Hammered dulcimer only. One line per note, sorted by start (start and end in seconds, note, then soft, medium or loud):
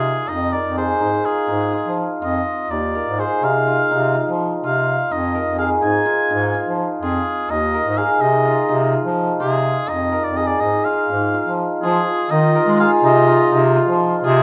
0.00 0.28 D#4 medium
0.00 1.24 F4 medium
0.00 0.77 G#4 medium
0.00 0.53 A#4 medium
0.28 1.00 D#4 medium
0.53 2.94 A#4 medium
0.77 3.18 G#4 medium
1.01 1.48 D#4 medium
1.25 1.73 F4 medium
1.48 2.70 D#4 medium
1.73 2.22 F4 medium
2.22 3.67 F4 medium
2.71 3.43 D#4 medium
2.95 5.34 A#4 medium
3.19 5.58 G#4 medium
3.43 3.91 D#4 medium
3.67 4.15 F4 medium
3.91 5.11 D#4 medium
4.15 4.63 F4 medium
4.64 6.05 F4 medium
5.11 5.82 D#4 medium
5.35 7.74 A#4 medium
5.58 7.97 G#4 medium
5.82 6.30 D#4 medium
6.06 6.54 F4 medium
6.31 7.50 D#4 medium
6.54 7.02 F4 medium
7.02 8.45 F4 medium
7.50 8.21 D#4 medium
7.74 10.12 A#4 medium
7.98 10.36 G#4 medium
8.21 8.69 D#4 medium
8.45 8.92 F4 medium
8.69 9.88 D#4 medium
8.93 9.40 F4 medium
9.40 10.85 F4 medium
9.88 10.60 D#4 medium
10.12 12.55 A#4 medium
10.37 12.79 G#4 medium
10.61 11.09 D#4 medium
10.86 11.34 F4 medium
11.10 12.30 D#4 medium
11.34 11.83 F4 medium
11.83 13.28 F4 medium
12.31 13.03 D#4 medium
12.55 14.43 A#4 medium
12.80 14.43 G#4 medium
13.03 13.52 D#4 medium
13.28 13.76 F4 medium
13.52 14.43 D#4 medium
13.76 14.23 F4 medium
14.24 14.43 F4 medium